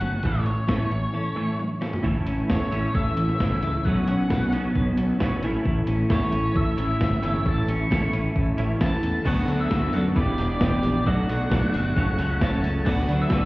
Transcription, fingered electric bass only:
0, 0, Header, 1, 2, 480
1, 0, Start_track
1, 0, Tempo, 450789
1, 257, Time_signature, 4, 2, 24, 8
1, 14324, End_track
2, 0, Start_track
2, 0, Title_t, "Fingered electric bass"
2, 0, Program_c, 0, 33
2, 6, Note_on_c, 0, 31, 86
2, 164, Note_off_c, 0, 31, 0
2, 250, Note_on_c, 0, 33, 91
2, 562, Note_off_c, 0, 33, 0
2, 735, Note_on_c, 0, 33, 81
2, 891, Note_off_c, 0, 33, 0
2, 966, Note_on_c, 0, 33, 82
2, 1125, Note_off_c, 0, 33, 0
2, 2176, Note_on_c, 0, 33, 92
2, 2330, Note_off_c, 0, 33, 0
2, 2415, Note_on_c, 0, 33, 86
2, 2569, Note_off_c, 0, 33, 0
2, 2659, Note_on_c, 0, 40, 86
2, 2812, Note_off_c, 0, 40, 0
2, 2893, Note_on_c, 0, 33, 87
2, 3048, Note_off_c, 0, 33, 0
2, 3141, Note_on_c, 0, 33, 91
2, 3294, Note_off_c, 0, 33, 0
2, 3376, Note_on_c, 0, 33, 80
2, 3530, Note_off_c, 0, 33, 0
2, 3622, Note_on_c, 0, 31, 87
2, 3774, Note_off_c, 0, 31, 0
2, 3852, Note_on_c, 0, 37, 86
2, 4008, Note_off_c, 0, 37, 0
2, 4101, Note_on_c, 0, 35, 93
2, 4254, Note_off_c, 0, 35, 0
2, 4324, Note_on_c, 0, 35, 85
2, 4482, Note_off_c, 0, 35, 0
2, 4581, Note_on_c, 0, 35, 90
2, 4733, Note_off_c, 0, 35, 0
2, 4806, Note_on_c, 0, 35, 86
2, 4964, Note_off_c, 0, 35, 0
2, 5064, Note_on_c, 0, 35, 92
2, 5216, Note_off_c, 0, 35, 0
2, 5292, Note_on_c, 0, 35, 88
2, 5447, Note_off_c, 0, 35, 0
2, 5539, Note_on_c, 0, 35, 90
2, 5692, Note_off_c, 0, 35, 0
2, 5774, Note_on_c, 0, 33, 90
2, 5929, Note_off_c, 0, 33, 0
2, 6022, Note_on_c, 0, 33, 95
2, 6174, Note_off_c, 0, 33, 0
2, 6262, Note_on_c, 0, 33, 86
2, 6414, Note_off_c, 0, 33, 0
2, 6499, Note_on_c, 0, 40, 83
2, 6652, Note_off_c, 0, 40, 0
2, 6740, Note_on_c, 0, 33, 88
2, 6893, Note_off_c, 0, 33, 0
2, 6979, Note_on_c, 0, 33, 99
2, 7133, Note_off_c, 0, 33, 0
2, 7223, Note_on_c, 0, 33, 90
2, 7376, Note_off_c, 0, 33, 0
2, 7462, Note_on_c, 0, 31, 96
2, 7615, Note_off_c, 0, 31, 0
2, 7710, Note_on_c, 0, 31, 90
2, 7860, Note_off_c, 0, 31, 0
2, 7944, Note_on_c, 0, 33, 102
2, 8097, Note_off_c, 0, 33, 0
2, 8187, Note_on_c, 0, 33, 92
2, 8339, Note_off_c, 0, 33, 0
2, 8424, Note_on_c, 0, 33, 90
2, 8577, Note_off_c, 0, 33, 0
2, 8658, Note_on_c, 0, 33, 88
2, 8813, Note_off_c, 0, 33, 0
2, 8898, Note_on_c, 0, 33, 100
2, 9053, Note_off_c, 0, 33, 0
2, 9140, Note_on_c, 0, 33, 88
2, 9294, Note_off_c, 0, 33, 0
2, 9378, Note_on_c, 0, 33, 94
2, 9533, Note_off_c, 0, 33, 0
2, 9615, Note_on_c, 0, 40, 88
2, 9771, Note_off_c, 0, 40, 0
2, 9858, Note_on_c, 0, 38, 97
2, 10077, Note_off_c, 0, 38, 0
2, 10089, Note_on_c, 0, 38, 91
2, 10311, Note_off_c, 0, 38, 0
2, 10338, Note_on_c, 0, 38, 89
2, 10557, Note_off_c, 0, 38, 0
2, 10574, Note_on_c, 0, 42, 84
2, 10794, Note_off_c, 0, 42, 0
2, 10818, Note_on_c, 0, 28, 99
2, 11036, Note_off_c, 0, 28, 0
2, 11056, Note_on_c, 0, 28, 93
2, 11275, Note_off_c, 0, 28, 0
2, 11295, Note_on_c, 0, 28, 93
2, 11514, Note_off_c, 0, 28, 0
2, 11540, Note_on_c, 0, 34, 87
2, 11757, Note_off_c, 0, 34, 0
2, 11781, Note_on_c, 0, 35, 97
2, 11997, Note_off_c, 0, 35, 0
2, 12019, Note_on_c, 0, 35, 91
2, 12236, Note_off_c, 0, 35, 0
2, 12265, Note_on_c, 0, 35, 91
2, 12479, Note_off_c, 0, 35, 0
2, 12501, Note_on_c, 0, 31, 87
2, 12716, Note_off_c, 0, 31, 0
2, 12743, Note_on_c, 0, 30, 99
2, 12957, Note_off_c, 0, 30, 0
2, 12986, Note_on_c, 0, 37, 90
2, 13198, Note_off_c, 0, 37, 0
2, 13219, Note_on_c, 0, 30, 94
2, 13434, Note_off_c, 0, 30, 0
2, 13453, Note_on_c, 0, 37, 94
2, 13695, Note_off_c, 0, 37, 0
2, 13695, Note_on_c, 0, 38, 103
2, 13911, Note_off_c, 0, 38, 0
2, 13935, Note_on_c, 0, 38, 91
2, 14150, Note_off_c, 0, 38, 0
2, 14170, Note_on_c, 0, 38, 98
2, 14324, Note_off_c, 0, 38, 0
2, 14324, End_track
0, 0, End_of_file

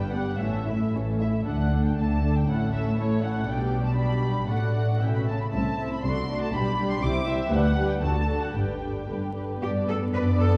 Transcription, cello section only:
0, 0, Header, 1, 2, 480
1, 0, Start_track
1, 0, Key_signature, 2, "major"
1, 0, Tempo, 528634
1, 359, Time_signature, 2, 2, 24, 8
1, 1798, Tempo, 499168
1, 3718, Tempo, 519481
1, 5158, Key_signature, 1, "major"
1, 5158, Tempo, 496278
1, 7558, Tempo, 535236
1, 8998, Tempo, 512383
1, 9887, End_track
2, 0, Start_track
2, 0, Title_t, "Cello section"
2, 0, Program_c, 0, 48
2, 0, Note_on_c, 0, 43, 52
2, 298, Note_off_c, 0, 43, 0
2, 350, Note_on_c, 0, 45, 38
2, 789, Note_off_c, 0, 45, 0
2, 841, Note_on_c, 0, 45, 44
2, 1274, Note_off_c, 0, 45, 0
2, 1324, Note_on_c, 0, 50, 35
2, 1738, Note_off_c, 0, 50, 0
2, 1789, Note_on_c, 0, 50, 44
2, 2225, Note_off_c, 0, 50, 0
2, 2280, Note_on_c, 0, 45, 45
2, 2706, Note_off_c, 0, 45, 0
2, 2758, Note_on_c, 0, 45, 48
2, 3178, Note_off_c, 0, 45, 0
2, 3229, Note_on_c, 0, 47, 44
2, 4151, Note_off_c, 0, 47, 0
2, 4190, Note_on_c, 0, 45, 37
2, 4629, Note_off_c, 0, 45, 0
2, 4677, Note_on_c, 0, 47, 44
2, 4904, Note_off_c, 0, 47, 0
2, 4920, Note_on_c, 0, 49, 39
2, 5155, Note_on_c, 0, 48, 43
2, 5157, Note_off_c, 0, 49, 0
2, 5564, Note_off_c, 0, 48, 0
2, 5640, Note_on_c, 0, 48, 53
2, 6041, Note_off_c, 0, 48, 0
2, 6125, Note_on_c, 0, 47, 61
2, 6518, Note_off_c, 0, 47, 0
2, 6591, Note_on_c, 0, 48, 68
2, 6991, Note_off_c, 0, 48, 0
2, 7070, Note_on_c, 0, 38, 64
2, 7478, Note_off_c, 0, 38, 0
2, 7554, Note_on_c, 0, 38, 63
2, 7955, Note_off_c, 0, 38, 0
2, 8037, Note_on_c, 0, 43, 42
2, 8444, Note_off_c, 0, 43, 0
2, 8528, Note_on_c, 0, 43, 44
2, 8926, Note_off_c, 0, 43, 0
2, 8999, Note_on_c, 0, 67, 73
2, 9074, Note_off_c, 0, 67, 0
2, 9243, Note_on_c, 0, 69, 75
2, 9318, Note_off_c, 0, 69, 0
2, 9487, Note_on_c, 0, 71, 81
2, 9562, Note_off_c, 0, 71, 0
2, 9720, Note_on_c, 0, 69, 73
2, 9887, Note_off_c, 0, 69, 0
2, 9887, End_track
0, 0, End_of_file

